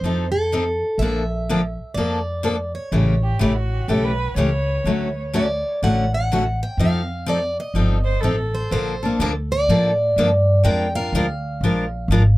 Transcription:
Already playing: C5
0.01 F2 F3 C4
0.05 D#4 A4
0.32 A4
0.52 F3 C4 D#4 A4
0.98 A#1 D3 A#3 E5
1.02 F3 D4 A4
1.49 D3 F3 A#3 D4 A4
1.94 F2 D3 F3 A#3 D4 A4 D5
2.43 D3 F3 A#3 D4 A4
2.75 C#5
2.92 A1 C#3 E3 A3 C#4 G4
3.23 G4
3.39 A1 C#3 E3 A3 C#4 E4 G4
3.56 F#4
3.88 B1 C#3 E3 A3 C#4 G4 A4
4.05 B4
4.35 C#2 C#3 E3 A3 C#4 G4 C#5
4.84 D2 D3 F#3 A3 C#4 F#4
5.33 D3 F#3 A3 C#4 F#4 D5
5.82 A1 D3 F#3 A3 C#4 F#4 F#5
6.14 F#5
6.32 D3 F#3 A3 C#4 F#4
6.63 G5
6.77 F2 F3 C4 D#4 A4 F5
7.26 F3 C4 D#4 A4 D5
7.60 D#5
7.74 G1 F3 C4 D#4 A4
8.05 C5
8.21 A1 F3 C4 D#4 A4
8.55 C5
8.71 A#1 D3 F3 A#3 D4 A4 C5
9.03 A#3 D4 A4
9.19 D2 D3 F3 A#3 D4 A4 A#4
9.52 D5
9.68 A2 D3 F3 A#3 D4 A4
10.16 G2 D3 F3 A#3 D4 A4
10.64 F2 F3 G#3 D4 F4 A#4 G5
10.95 D4 F4 A#4 F5
11.12 D2 F3 G#3 D4 F4 A#4
11.61 A#1 F3 G#3 D4
11.65 F4 A#4
12.08 G#1 F3 G#3 D4 A#4
12.12 F4

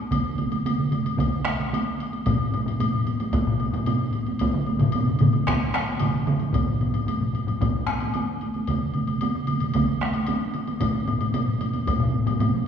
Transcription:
0.11 taiko, taiko mid, taiko high, high woodblock
0.24 taiko mid
0.38 taiko mid, taiko high, high woodblock
0.52 taiko mid, taiko high, high woodblock
0.65 taiko mid, taiko high, high woodblock
0.78 taiko mid
0.91 taiko mid, taiko high, high woodblock
1.04 taiko mid, taiko high, high woodblock
1.17 taiko, taiko mid, taiko high, high woodblock
1.45 taiko rim, taiko high, high woodblock
1.60 taiko high, high woodblock
1.73 taiko high, high woodblock
2.00 taiko high, high woodblock
2.13 taiko high, high woodblock
2.26 taiko, taiko low-mid, taiko high, high woodblock
2.52 taiko low-mid, taiko high, high woodblock
2.66 taiko low-mid, taiko high, high woodblock
2.80 taiko low-mid, taiko high, high woodblock
2.94 taiko low-mid
3.07 taiko low-mid, taiko high, high woodblock
3.20 taiko low-mid, taiko high, high woodblock
3.33 taiko, taiko high, high woodblock
3.47 taiko low-mid
3.60 taiko high, high woodblock
3.73 taiko low-mid, taiko high, high woodblock
3.86 taiko low-mid, taiko high, high woodblock
4.13 taiko high, high woodblock
4.27 taiko high, high woodblock
4.39 taiko, taiko high, high woodblock
4.54 taiko low-mid, taiko mid
4.67 taiko high, high woodblock
4.80 taiko low-mid, taiko mid, high woodblock
4.92 taiko low-mid, taiko mid, taiko high, high woodblock
5.07 taiko low-mid, taiko mid
5.19 taiko low-mid, taiko mid, taiko high, high woodblock
5.33 taiko high, high woodblock
5.47 taiko rim, taiko, taiko high, high woodblock
5.73 taiko rim, taiko high, high woodblock
5.86 taiko high, high woodblock
6.00 taiko low-mid, taiko mid, taiko high, high woodblock
6.27 taiko low-mid, taiko mid, taiko high, high woodblock
6.40 high woodblock
6.54 taiko, taiko low-mid, taiko high, high woodblock
6.68 taiko low-mid
6.81 taiko low-mid, taiko high, high woodblock
6.94 taiko low-mid, taiko high, high woodblock
7.07 taiko low-mid, taiko high, high woodblock
7.21 taiko low-mid
7.34 taiko low-mid, high woodblock
7.47 taiko low-mid, taiko high, high woodblock
7.61 taiko, taiko low-mid, taiko high, high woodblock
7.87 taiko rim, taiko high, high woodblock
8.00 taiko high, high woodblock
8.14 taiko high, high woodblock
8.41 taiko high, high woodblock
8.54 taiko high, high woodblock
8.67 taiko, taiko mid, taiko high, high woodblock
8.81 taiko mid
8.94 taiko mid, taiko high, high woodblock
9.07 taiko mid, taiko high, high woodblock
9.21 taiko mid, taiko high, high woodblock
9.35 taiko mid
9.47 taiko mid, taiko high, high woodblock
9.60 taiko mid, taiko high, high woodblock
9.74 taiko, taiko mid, taiko high, high woodblock
10.01 taiko rim, taiko high, high woodblock
10.14 taiko high, high woodblock
10.27 taiko high, high woodblock
10.54 taiko high, high woodblock
10.67 taiko high, high woodblock
10.80 taiko, taiko low-mid, taiko high, high woodblock
11.08 taiko low-mid, taiko high, high woodblock
11.21 taiko low-mid, taiko high, high woodblock
11.34 taiko low-mid, taiko high, high woodblock
11.48 taiko low-mid
11.61 taiko low-mid, taiko high, high woodblock
11.73 taiko low-mid, taiko high, high woodblock
11.87 taiko, taiko high, high woodblock
12.00 taiko low-mid
12.14 taiko high
12.27 taiko low-mid, taiko high, high woodblock
12.40 taiko low-mid, taiko high, high woodblock

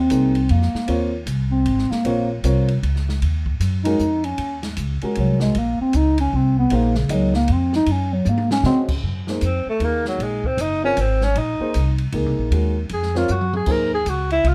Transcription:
Already playing: C4
0.10 C2 A#3 D#4 G#4 C5, hi-hat pedal, ride
0.35 ride
0.49 F2 A#3, ride
0.62 snare
0.74 muted upright bass stroke, snare
0.87 D#2 C4 F4 A#4 C#5, ride
1.26 C2, hi-hat pedal, ride
1.51 C4
1.66 G#1, ride
1.78 snare
1.91 A#3, muted upright bass stroke, snare
2.04 A#1 C4 F4 A#4 C#5, ride
2.44 C2 C4 F4 A#4 C#5, hi-hat pedal, ride
2.68 ride
2.83 C#2, ride
2.96 snare
3.09 snare
3.22 D#2, ride
3.46 kick
3.60 F#2, hi-hat pedal, ride
3.84 G#3 C#4 D#4 F#4 A#4, ride
3.99 F2, hi-hat pedal
4.24 C#4, ride
4.38 D#2, ride
4.63 snare, ride
4.77 C#2, hi-hat pedal, ride
5.01 G#3 C#4 F#4 A#4, muted upright bass stroke, ride
5.15 C2 F#3, ride
5.40 G#3, snare
5.55 A#1 A#3, ride
5.80 C4, muted upright bass stroke
5.93 C#2 D#4, hi-hat pedal, ride
6.18 C#4, ride
6.33 C2 C4
6.59 B3
6.70 A#1 A#3 D#4 G#4 C5, ride
6.75 A#3
6.95 C#3, snare
7.09 C#2 F#3 A#3 D#4 G#4 D#5, hi-hat pedal, ride
7.34 A#3, snare
7.48 F2, ride
7.52 C4
7.73 D#4, snare
7.86 F#2, ride
7.91 C#4
8.13 F#3
8.25 G#2 A#3, hi-hat pedal, high tom
8.38 high tom
8.51 C#4, snare
8.63 C#3 C4 C#4 F#4 C5 D#5, snare
8.88 kick, crash
9.03 F#2
9.27 A#3 D#4 G#4 C5, snare
9.41 F2 C4, hi-hat pedal, ride
9.66 A3, muted upright bass stroke
9.80 D#2 A#3 D#4 G#4 A#4, ride
9.85 A#3
10.05 F#3, snare
10.19 A#1, ride
10.23 G#3
10.44 C4, kick
10.57 F#1, hi-hat pedal, ride
10.61 D#4
10.83 C4 C#4 F4 A#4 C#5
10.97 G#1 C4, hi-hat pedal, ride
11.21 C#4, snare
11.35 A#1 D#4, ride
11.60 A#3 D#4 G#4 C5, muted upright bass stroke
11.74 C2, hi-hat pedal, ride
11.98 ride
12.12 C#2 A#3 D#4 G#4 A#4, ride
12.26 C2
12.38 A#1
12.51 D#2 G#3 C#4 F#4 A#4, ride
12.89 F2, ride
12.93 G#4
13.02 snare
13.15 C4 F4 A#4 C#5, snare
13.28 F#2, hi-hat pedal
13.32 F#4
13.41 mid tom
13.53 G#4, mid tom
13.66 D#2 A#3 D#4 G#4 C5, kick, crash
13.72 A#4
13.94 G#4
14.05 C#2, hi-hat pedal, ride
14.09 F#4
14.30 E4, ride
14.44 C2 F4, ride

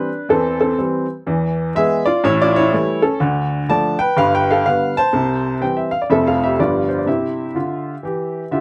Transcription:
Already playing: D4 B4
0.29 E2 E3 C4 A4
0.61 C4 A4
0.78 E3 G3 C4
1.27 E2 E3
1.75 E3 G#3 B3 G#4 E5
2.06 F4 D5
2.24 A1 A2 E4 C#5
2.42 F4 D5
2.56 E4 C#5
2.73 E3 G3 A3
3.02 C#4 A4
3.20 D2 D3
3.69 D3 F3 A3 D5 A5
3.99 B4 G5
4.17 G1 G2 B4 F5
4.35 B4 G5
4.51 A4 F5
4.66 D3 G3 B3 B4 F5
4.97 C5 A5
5.13 C2 C3
5.61 E3 G3 C4 G5
5.77 E5
5.91 F5
6.02 D5
6.10 F1 F2 F3 A3 C4 A4 E5
6.27 A4 F5
6.44 G4 E5
6.59 G1 G2 F3 G3 B3 F4 D5
6.89 C5
6.99 D5
7.06 C3 E4 G4 E5
7.55 D3 F4
8.03 E3 G4
8.51 D3 F4 G4 E5

